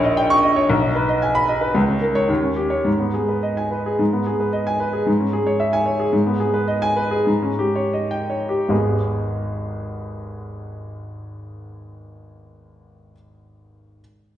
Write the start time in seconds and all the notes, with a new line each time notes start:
Already playing: A#1 D#4 C#5
0.04 D#5
0.17 G5
0.30 C#6
0.43 D#5
0.56 C#5
0.70 B1
0.82 D#4
0.95 B4
1.09 D#5
1.22 G#5
1.35 B5
1.48 D#5
1.61 B4
1.75 C#2
1.88 C#4
2.01 A#4
2.15 C#5
2.28 D#2
2.42 C#4
2.56 G4
2.70 C#5
2.85 G#2
3.00 B3
3.14 G#4
3.28 B4
3.43 D#5
3.57 G#5
3.71 B4
3.86 G#4
3.99 G#2
4.13 B3
4.27 G#4
4.40 B4
4.53 D#5
4.67 G#5
4.80 B4
4.93 G#4
5.07 G#2
5.20 C#4
5.33 G#4
5.47 C#5
5.60 E5
5.73 G#5
5.86 C#5
6.00 G#4
6.13 G#2
6.27 B3
6.40 G#4
6.54 B4
6.68 D#5
6.82 G#5
6.97 B4
7.11 G#4
7.27 G#2
7.42 C#4
7.59 G4
7.75 C#5
7.93 D#5
8.11 G5
8.30 C#5
8.49 G4
8.69 G#1 D#2 G#3 B3 D#4 G#4